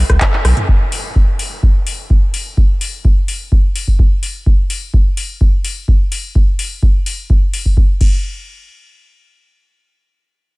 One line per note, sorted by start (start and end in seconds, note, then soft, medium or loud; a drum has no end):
0.10 0.18 C#2 medium
0.10 kick medium
0.10 cross-stick medium
0.10 closed hi-hat soft
0.21 kick loud
0.21 clap loud
0.21 closed hi-hat medium
0.33 clap soft
0.45 0.54 B1 medium
0.45 cross-stick medium
0.45 open hi-hat medium
0.57 closed hi-hat soft
0.57 mid tom medium
0.68 kick loud
0.92 open hi-hat loud
1.16 kick loud
1.39 open hi-hat medium
1.63 kick loud
1.87 open hi-hat medium
2.10 kick loud
2.34 open hi-hat medium
2.57 kick loud
2.81 open hi-hat loud
3.05 kick loud
3.28 open hi-hat medium
3.52 kick loud
3.75 open hi-hat medium
3.88 kick medium
3.99 kick loud
4.23 open hi-hat medium
4.46 kick loud
4.70 open hi-hat loud
4.94 kick loud
5.17 open hi-hat medium
5.41 kick loud
5.64 open hi-hat medium
5.88 kick loud
6.12 open hi-hat medium
6.35 kick loud
6.59 open hi-hat loud
6.83 kick loud
7.06 open hi-hat medium
7.30 kick loud
7.54 open hi-hat medium
7.66 kick medium
7.77 kick loud
8.01 kick loud
8.01 crash medium